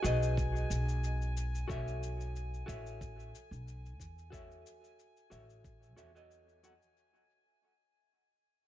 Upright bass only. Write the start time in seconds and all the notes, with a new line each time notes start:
0.04 B1
0.70 B1
1.69 B1
2.68 A1
3.51 B1
4.00 E2
5.31 A1
5.97 E2